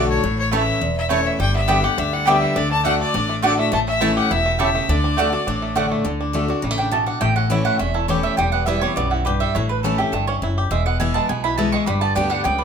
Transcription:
Already playing: B1 A2 D3 A3 D4 F#4
0.10 C#5
0.24 A1 A2
0.39 C#5
0.51 E3 A3 C#4 E4 C#5 E5 A5
0.81 E1 E2
0.97 E5
1.09 E3 A3 C#4 E4 C#5 A5
1.26 E5
1.40 G1 G2 G3 G5
1.55 B3 E5
1.68 D3 G3 B3 D4 G4 D5 G5
1.83 B3 G4 F#5
1.98 D2 D3 D4 E5
2.13 G3 F#5
2.25 D3 G3 B3 G4 D5 E5 G5
2.41 G3
2.56 D2 D3 D4 D5
2.71 D4 A5
2.84 D3 A3 D4 F#4 D5 F#5
3.01 D4 D5
3.14 A1 A2 D4
3.29 A3
3.42 D3 A3 D4 F#4 D5 F#5
3.59 A3 E5
3.72 A1 A2 A3 A5
3.88 C#4 E5
4.01 E3 A3 C#4 E4 C#5 A5
4.17 G4 F#5
4.31 E1 B2 E4 E5
4.46 A3
4.59 C#3 A3 E4 G4 C#5 E5 A5
4.75 A3
4.88 D2 D3 D4 D5
5.04 D4
5.17 D3 A3 D4 F#4 D5 F#5
5.32 D4 F#4
5.47 A1 A2 D4
5.62 A3
5.75 D3 A3 D4 F#4 D5 F#5
5.92 A3
6.05 D2 D3
6.21 D4
6.33 D3 A3 D4 F#4
6.48 D4 F#4
6.62 A1 C#3 G3
6.71 A3
6.78 D4 G5
6.91 B2 A3 A5
7.07 D4 F#5
7.21 A1 A2 A3 G5
7.36 C#4 F#5
7.50 E3 A3 C#4 E4 D5
7.65 A3 F#5
7.79 E1 E2 C#4 E5
7.94 E4 A4
8.08 E3 A3 C#4 E4 G4 C#5
8.23 A3 E5
8.37 E1 E2 G3 G5
8.52 B3 F#5
8.66 E3 G3 B3 E4 E5
8.81 G3 B3 E4 C#5
8.96 B1 F#2 B3 D5
9.11 E4 F#4
9.25 G2 G4 B4
9.40 G3 E5
9.55 A1 A2 E4 C#5
9.69 B4
9.83 E3 A3 C#4 E4 A4
9.98 C#4 E4 G4
10.12 G1 G2 A3 A4
10.27 C#4 C#5
10.42 F#1 F#2 E4
10.58 G4
10.71 E1 E2 G#3 E5
10.86 B3 F#5
11.00 E3 G#3 B3 E4 G#5
11.14 G#3 A5
11.29 B1 B2 B3 G#5
11.44 E4 B5
11.57 E3 G#3 B3 E4 A5
11.72 G#3 C#6
11.86 G1 G2 G3 B5
12.01 B3 A5
12.15 D2 D3 G3 B3 D4 G4 G5
12.30 G3 F#5
12.44 C#2 F#2 B3 G5
12.58 D4 B4

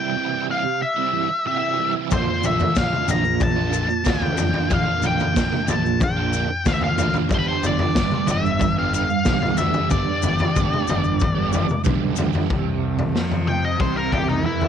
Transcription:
Already playing: C3 E3 G3 C4 E4 G5
0.16 C3 E3 G3 C4 E4
0.49 E3 G3 C4 E4 F5
0.65 muted overdriven electric guitar stroke
0.82 E5
0.96 G3 C4 E4
1.13 E3 G3 C4 E4
1.29 muted overdriven electric guitar stroke
1.46 C3 E3 G3 C4 E4 E5
1.79 E3 G3 C4 E4
1.94 G3 C4 E4
2.10 A#1 A#2 D3 A#3 D4 F4 C5, kick, floor tom, maracas
2.42 A#1 D3 A#3 D4 F4 E5, floor tom, maracas
2.59 floor tom, maracas
2.75 A#1 A#2 D3 A#3 D4 F4 F5, kick, snare, maracas
2.93 mid tom
3.08 A#1 D3 A#3 D4 F4 A#5, floor tom, maracas
3.24 muted overdriven electric guitar stroke, maracas
3.40 A5, kick, floor tom, maracas
3.56 A#3 D4 F4
3.72 D3 A#3 D4 F4, maracas
3.88 muted overdriven electric guitar stroke, maracas
4.04 D2 A#2 D3 A#3 D4 F4, kick, snare, maracas
4.10 G5
4.22 floor tom
4.37 F2 D3 A#3 D4 F4, floor tom, maracas
4.53 A#3 D4 F4, floor tom
4.69 A#1 A#2 D3 A#3 D4 F4, kick, floor tom, maracas
4.74 F5
5.02 A#1 D3 A#3 D4 F4, floor tom, maracas
5.07 G5
5.19 floor tom, maracas
5.34 A#1 A#2 D3 A#3 D4 F4, kick, snare, maracas
5.52 mid tom
5.66 A#1 D3 A#3 D4 F4, floor tom, maracas
5.70 A5
5.84 muted overdriven electric guitar stroke, maracas
6.00 G5, kick, floor tom, maracas
6.16 A#3 D4 F4
6.33 D3 A#3 D4 F4, maracas
6.49 muted overdriven electric guitar stroke
6.66 D2 A#2 D3 A#3 D4 F4 F5, kick, snare, maracas
6.74 E5
6.81 F5, floor tom
6.98 D2 D3 A#3 D4 F4, floor tom, maracas
7.14 A#3 D4 F4, floor tom, maracas
7.29 G1 G2 D3 G3 B3 D4, kick, floor tom, maracas
7.34 G4 C5
7.39 B4
7.48 C5
7.63 G1 G3 B3 D4 G4 D5, floor tom, maracas
7.79 floor tom
7.95 G1 G2 D3 G3 B3 D4 G4, kick, snare, maracas
8.12 mid tom
8.27 G1 G3 B3 D4 G4 E5, floor tom, maracas
8.45 muted overdriven electric guitar stroke, maracas
8.59 kick, floor tom, maracas
8.77 G3 B3 D4 G4 F5
8.93 G3 B3 D4 G4 F5, maracas
9.09 muted overdriven electric guitar stroke, maracas
9.25 B1 G2 D3 G3 B3 D4 G4, kick, snare, maracas
9.42 floor tom
9.57 D2 G3 B3 D4 G4 E5, floor tom, maracas
9.73 G3 B3 D4 G4, floor tom, maracas
9.90 G1 G2 D3 G3 B3 D4 G4 D5, kick, floor tom, maracas
10.22 G1 G3 B3 D4 G4, floor tom, maracas
10.39 floor tom, maracas
10.55 G1 G2 D3 G3 B3 D4 G4, kick, mid tom, maracas
10.73 mid tom
10.87 G1 G3 B3 D4 G4, floor tom, maracas
11.04 muted overdriven electric guitar stroke, maracas
11.20 kick, floor tom, maracas
11.35 G3 B3 D4 G4
11.52 G3 B3 D4 G4, floor tom, maracas
11.68 muted overdriven electric guitar stroke, mid tom, maracas
11.84 B1 G2 D3 G3 B3 D4 G4, kick, mid tom, maracas
12.16 D2 G3 B3 D4 G4, floor tom, maracas
12.32 G3 B3 D4 G4, floor tom, maracas
12.49 C2 G2 C3, kick, floor tom
12.99 floor tom
13.12 F2 C3 F3, snare
13.32 floor tom
13.48 G5, mid tom
13.65 D#5
13.74 C3
13.79 C2 C3 C5, kick
13.97 A#4
14.12 G4, kick, floor tom
14.29 D#4, mid tom
14.36 C2
14.43 E2 E3 E4
14.61 floor tom

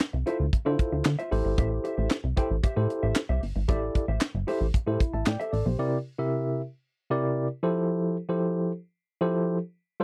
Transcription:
0.00 muted clean electric guitar stroke, snare, clap, closed hi-hat
0.13 C2, muted clean electric guitar stroke
0.26 E4 F4 A4 C5 E5, closed hi-hat
0.40 D2, muted clean electric guitar stroke
0.53 muted clean electric guitar stroke, kick, closed hi-hat
0.65 D3 E4 F4 A4 C5, muted clean electric guitar stroke
0.79 kick, closed hi-hat
0.92 D2, muted clean electric guitar stroke
1.05 D3, muted clean electric guitar stroke, snare, clap, closed hi-hat
1.19 F4 C5 E5, closed hi-hat
1.31 A1 E4 G4 A4 C5, muted clean electric guitar stroke, open hi-hat
1.45 G#1, muted clean electric guitar stroke
1.58 A1 G4 C5 E5, kick, closed hi-hat
1.71 muted clean electric guitar stroke
1.84 G4 C5 E5, closed hi-hat
1.97 A1 G4 C5 E5
2.10 snare, clap, closed hi-hat
2.24 C2, muted clean electric guitar stroke
2.37 E4 G4 A4 C5 G5, kick, closed hi-hat
2.50 A1, muted clean electric guitar stroke
2.63 G4 C5 E5, kick, closed hi-hat
2.76 A2 E4 G4 A4 C5, muted clean electric guitar stroke
2.90 muted clean electric guitar stroke, closed hi-hat
3.03 A1 G4 C5 E5
3.15 muted clean electric guitar stroke, snare, clap, closed hi-hat
3.29 C2 G4 C5 E5
3.43 G1, muted clean electric guitar stroke, open hi-hat
3.56 G#1, muted clean electric guitar stroke
3.68 A1 E4 G4 A4 C5 D5 E5, kick, closed hi-hat
3.82 muted clean electric guitar stroke
3.95 muted clean electric guitar stroke, kick, closed hi-hat
4.08 A1 G4 C5 E5
4.21 muted clean electric guitar stroke, snare, clap, closed hi-hat
4.35 G1, muted clean electric guitar stroke
4.47 E4 G4 A4 C5 E5, open hi-hat
4.61 A1, muted clean electric guitar stroke
4.74 A2, muted clean electric guitar stroke, kick, closed hi-hat
4.87 A2 E4 G4 A4 C5, muted clean electric guitar stroke
5.00 kick, closed hi-hat
5.14 A1 E5 A5, muted clean electric guitar stroke
5.26 A2 D5 G5, muted clean electric guitar stroke, snare, clap, closed hi-hat
5.40 G4 A4 C5 E5, closed hi-hat
5.53 A1 A4 D5, muted clean electric guitar stroke, open hi-hat
5.66 B1 G4 C5, muted clean electric guitar stroke
5.79 C3 E4 G4 A#4 D5
6.18 C3 E4 G4 A#4 E5
7.10 C3 E4 G4 A#4 D5
7.63 F3 E4 G4 A4 C5
8.29 F3 E4 G4 A4 C5
9.21 F3 E4 G4 A4 C5
10.00 G3 F4 A4 A#4 C5

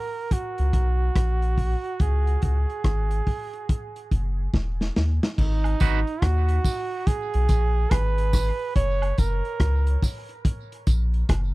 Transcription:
Already playing: A#4
0.31 F#4, kick, closed hi-hat
0.58 C#2, closed hi-hat
0.73 B1, kick, closed hi-hat
1.16 A#1, kick, cross-stick, closed hi-hat
1.42 closed hi-hat
1.58 kick, open hi-hat
1.84 closed hi-hat
2.00 C#2 G#4, kick, closed hi-hat
2.27 closed hi-hat
2.42 C#2 G#4, kick, closed hi-hat
2.70 closed hi-hat
2.84 G#1, kick, cross-stick, closed hi-hat
3.11 closed hi-hat
3.27 kick, open hi-hat
3.53 closed hi-hat
3.69 kick, closed hi-hat
3.96 closed hi-hat
4.11 F#1, kick, closed hi-hat
4.54 E1, kick, snare
4.81 snare
4.96 D#2, snare
5.23 snare
5.38 G#1 D#4, kick, crash
5.64 closed hi-hat, high woodblock
5.80 G#1 D#4 F#4 B4, kick, closed hi-hat, tambourine
6.07 closed hi-hat
6.22 D#2 F#4, kick, cross-stick, closed hi-hat
6.49 closed hi-hat
6.64 kick, open hi-hat, tambourine
7.07 G#4, kick, closed hi-hat
7.34 B1, closed hi-hat
7.49 A#1, kick, closed hi-hat, tambourine
7.91 G#1 B4, kick, cross-stick, closed hi-hat, high woodblock
8.18 closed hi-hat
8.33 kick, cross-stick, open hi-hat, tambourine
8.76 F#1 C#5, kick, closed hi-hat
9.02 closed hi-hat, high woodblock
9.18 F#1 A#4, kick, closed hi-hat, tambourine
9.45 closed hi-hat
9.60 C#2, kick, cross-stick, closed hi-hat
9.87 closed hi-hat
10.02 kick, open hi-hat, tambourine
10.29 closed hi-hat
10.45 kick, closed hi-hat
10.72 closed hi-hat
10.87 A#1, kick, closed hi-hat, tambourine
11.14 closed hi-hat
11.29 F#1, kick, cross-stick, closed hi-hat, high woodblock

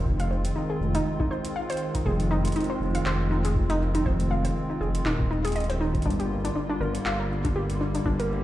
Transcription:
Already playing: D#3 G#3 C4 F4
0.06 F1, kick
0.20 F5, closed hi-hat
0.31 C5
0.45 closed hi-hat
0.56 D#4
0.70 G#4
0.81 F1
0.95 D#4, closed hi-hat
1.20 D#4, kick
1.31 C5
1.45 closed hi-hat
1.56 F5
1.70 C5, closed hi-hat
1.72 closed hi-hat
1.77 closed hi-hat
1.95 D#4, kick, closed hi-hat
2.06 F1 G#4, kick
2.20 closed hi-hat
2.31 D#4
2.45 closed hi-hat
2.48 closed hi-hat
2.52 closed hi-hat
2.56 D#4, closed hi-hat
2.61 closed hi-hat
2.64 closed hi-hat
2.70 C5
2.81 F1
2.95 F5, closed hi-hat
3.06 F1 C5, clap
3.31 D#4
3.45 G#4, closed hi-hat
3.56 kick
3.70 D#4, closed hi-hat
3.95 D#4, closed hi-hat
4.06 F1 C5, kick
4.20 closed hi-hat
4.31 F5
4.45 C5, closed hi-hat
4.70 D#4
4.81 F1 G#4
4.95 closed hi-hat
5.06 D#1 D#4, clap
5.20 kick
5.31 D#4
5.45 G#4, closed hi-hat
5.47 closed hi-hat
5.52 D#5, closed hi-hat
5.56 closed hi-hat
5.60 closed hi-hat
5.64 closed hi-hat
5.70 C5, closed hi-hat
5.81 D#4
5.95 kick, closed hi-hat
6.02 G1 D3 G3 A#3 D4 F4, kick, closed hi-hat
6.10 closed hi-hat
6.20 G4, closed hi-hat
6.45 D4, closed hi-hat
6.56 D4
6.70 D4
6.81 G1 A#4
6.95 closed hi-hat
7.06 G1 F5, clap
7.20 A#4
7.45 D4, kick, closed hi-hat
7.56 G4
7.70 closed hi-hat
7.81 D4
7.95 D4, closed hi-hat
8.06 G1 D4 G4, kick
8.20 A#4, closed hi-hat

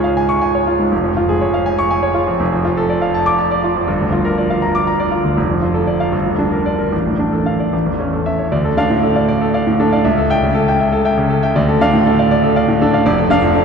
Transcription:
Already playing: C#2 G#2 F4 G#4 C#5
0.04 F5
0.17 G#5
0.29 C#6
0.42 G#5
0.55 C#5
0.67 F4
0.79 G#2
0.92 F1
1.04 F2
1.17 F4
1.29 G#4
1.41 C#5
1.54 F5
1.66 G#5
1.79 C#6
1.91 G#5
2.03 C#5
2.14 F4
2.27 F2
2.40 F1
2.53 F2
2.65 F4
2.77 A4
2.90 D5
3.02 F5
3.14 A5
3.26 D6
3.39 A5
3.51 D5
3.64 F4
3.76 F2
3.88 G1
4.01 D2
4.12 F4
4.25 A#4
4.38 D5
4.50 F5
4.62 A#5
4.75 D6
4.87 A#5
5.00 D5
5.12 F4
5.24 D2
5.37 F1
5.49 F2
5.62 F4
5.74 A4
5.87 D5
6.00 F5
6.12 G1
6.25 D2
6.38 D4
6.52 A#4
6.66 D5
6.79 A#4
6.92 A1
7.06 A2
7.19 D4
7.33 A4
7.46 F5
7.60 D5
7.73 A1
7.86 E2
8.00 C#4
8.13 A4
8.26 E5
8.39 C#5
8.52 D2 D5
8.65 A4
8.77 D4 D5 F5
8.90 A2
9.03 A4
9.16 D5 F5
9.28 D5
9.41 A4
9.54 D5 F5
9.67 A2
9.80 D4 A4
9.92 D5 F5
10.05 C#2 E5
10.17 A4
10.30 E5 G5
10.43 C#3
10.54 A4
10.68 E5 G5
10.80 E5
10.93 A4
11.05 E5 G5
11.17 C#3
11.30 A4
11.43 E5 G5
11.56 D2 D5
11.69 A4
11.81 D4 D5 F5
11.93 A2
12.06 A4
12.19 D5 F5
12.31 D5
12.43 A4
12.56 D5 F5
12.68 A2
12.82 D4 A4
12.93 D5 F5
13.06 F1 D5
13.18 A4
13.30 D4 D5 F5
13.42 F2
13.55 A4

